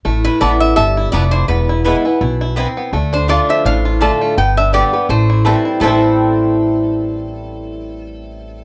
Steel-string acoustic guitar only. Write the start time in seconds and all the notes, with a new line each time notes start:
0.05 A2
0.40 E3 A3 B3 E4
0.77 G2
1.13 F2
1.49 E2
1.85 E3 G#3 B3 E4
2.04 B3 E4
2.21 B2
2.57 C4
2.93 D3
3.29 D3 A3 D4 F4
3.66 A2
4.01 D3 A3 D4 F4
4.38 G2
4.73 D3 G3 B3 G4
4.93 B3 G4
5.09 A2
5.45 E3 G3 C4 E4
5.80 A2 E3 G3 C4 E4